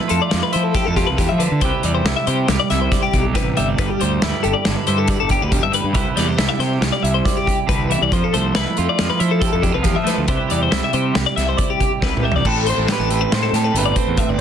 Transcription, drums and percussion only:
0.09 closed hi-hat medium
0.31 snare loud
0.31 closed hi-hat medium
0.53 closed hi-hat medium
0.74 kick loud
0.74 snare soft
0.74 closed hi-hat medium
0.96 kick medium
0.96 snare soft
0.96 closed hi-hat medium
1.18 kick medium
1.18 snare soft
1.18 closed hi-hat medium
1.40 closed hi-hat medium
1.61 kick loud
1.61 closed hi-hat medium
1.83 closed hi-hat medium
2.06 snare loud
2.06 closed hi-hat medium
2.27 closed hi-hat medium
2.48 snare loud
2.48 closed hi-hat medium
2.70 snare soft
2.70 closed hi-hat medium
2.92 kick loud
2.92 snare soft
2.92 closed hi-hat medium
3.13 kick medium
3.13 closed hi-hat medium
3.35 kick loud
3.35 snare soft
3.35 closed hi-hat medium
3.57 closed hi-hat medium
3.78 kick loud
3.78 closed hi-hat medium
4.01 closed hi-hat medium
4.22 snare loud
4.22 closed hi-hat medium
4.44 closed hi-hat medium
4.65 snare loud
4.65 closed hi-hat medium
4.87 closed hi-hat medium
5.07 kick loud
5.07 closed hi-hat medium
5.29 kick medium
5.29 closed hi-hat medium
5.52 kick loud
5.52 closed hi-hat medium
5.73 closed hi-hat medium
5.94 kick loud
5.94 closed hi-hat medium
6.17 snare soft
6.17 closed hi-hat medium
6.38 snare loud
6.38 closed hi-hat medium
6.60 snare soft
6.60 closed hi-hat medium
6.82 snare loud
6.82 closed hi-hat medium
7.05 closed hi-hat medium
7.25 kick loud
7.25 snare soft
7.25 closed hi-hat medium
7.47 kick medium
7.47 closed hi-hat medium
7.69 kick loud
7.69 closed hi-hat medium
7.91 closed hi-hat medium
8.12 kick loud
8.12 closed hi-hat medium
8.34 closed hi-hat medium
8.55 snare loud
8.55 closed hi-hat medium
8.77 closed hi-hat medium
8.99 snare loud
8.99 closed hi-hat medium
9.20 closed hi-hat medium
9.42 kick loud
9.42 closed hi-hat medium
9.63 kick medium
9.63 closed hi-hat medium
9.84 kick loud
9.84 snare soft
9.84 closed hi-hat medium
10.07 snare soft
10.07 closed hi-hat medium
10.28 kick loud
10.28 closed hi-hat medium
10.50 closed hi-hat medium
10.72 snare medium
10.72 closed hi-hat medium
10.93 closed hi-hat medium
11.15 snare loud
11.15 closed hi-hat medium
11.38 snare soft
11.38 closed hi-hat medium
11.58 kick loud
11.58 closed hi-hat medium
11.80 kick medium
11.80 closed hi-hat medium
12.02 kick loud
12.02 snare medium
12.17 mid tom medium
12.32 floor tom medium
12.45 kick loud
12.45 crash loud
12.66 closed hi-hat medium
12.88 snare loud
12.88 closed hi-hat medium
13.10 closed hi-hat medium
13.32 snare loud
13.32 closed hi-hat medium
13.54 snare soft
13.54 closed hi-hat medium
13.76 closed hi-hat medium
13.96 kick medium
13.96 closed hi-hat medium
14.17 kick loud
14.17 closed hi-hat medium

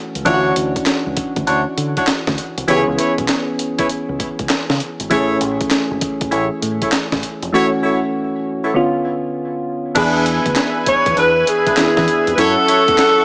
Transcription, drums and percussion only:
0.15 closed hi-hat soft
0.26 kick loud
0.26 closed hi-hat medium
0.56 closed hi-hat medium
0.76 kick medium
0.76 closed hi-hat medium
0.86 snare loud
0.86 clap medium
0.86 closed hi-hat medium
1.17 kick loud
1.17 closed hi-hat medium
1.36 kick loud
1.36 closed hi-hat medium
1.47 closed hi-hat medium
1.78 closed hi-hat medium
1.97 kick medium
1.97 closed hi-hat medium
2.07 snare loud
2.07 clap medium
2.07 closed hi-hat medium
2.27 kick loud
2.27 snare medium
2.38 closed hi-hat medium
2.58 closed hi-hat medium
2.68 closed hi-hat medium
2.99 closed hi-hat medium
3.18 kick medium
3.18 closed hi-hat medium
3.28 snare loud
3.28 clap medium
3.28 closed hi-hat medium
3.59 closed hi-hat medium
3.79 kick medium
3.79 closed hi-hat medium
3.89 closed hi-hat medium
4.20 kick medium
4.20 closed hi-hat medium
4.39 kick medium
4.39 closed hi-hat medium
4.49 snare loud
4.49 clap medium
4.49 closed hi-hat medium
4.70 snare medium
4.80 closed hi-hat medium
5.00 closed hi-hat soft
5.11 kick loud
5.11 closed hi-hat medium
5.41 closed hi-hat medium
5.61 kick medium
5.61 closed hi-hat soft
5.71 snare loud
5.71 clap medium
5.71 closed hi-hat medium
6.01 kick loud
6.01 closed hi-hat medium
6.21 kick loud
6.21 closed hi-hat medium
6.32 closed hi-hat medium
6.62 closed hi-hat medium
6.82 kick medium
6.82 closed hi-hat medium
6.92 snare loud
6.92 clap loud
6.92 closed hi-hat medium
7.12 kick loud
7.12 snare medium
7.23 closed hi-hat medium
7.42 closed hi-hat soft
9.96 kick loud
9.96 closed hi-hat medium
9.96 crash medium
10.26 closed hi-hat medium
10.46 kick medium
10.46 closed hi-hat medium
10.56 snare loud
10.56 clap medium
10.56 closed hi-hat medium
10.86 kick loud
10.86 closed hi-hat medium
11.06 kick loud
11.06 closed hi-hat medium
11.17 closed hi-hat medium
11.47 closed hi-hat medium
11.67 kick medium
11.67 closed hi-hat medium
11.77 snare loud
11.77 clap loud
11.77 closed hi-hat medium
11.97 kick loud
11.97 snare medium
12.08 closed hi-hat medium
12.27 closed hi-hat medium
12.38 closed hi-hat medium
12.68 closed hi-hat medium
12.88 kick medium
12.88 closed hi-hat medium
12.98 snare loud
12.98 clap medium
12.98 closed hi-hat medium

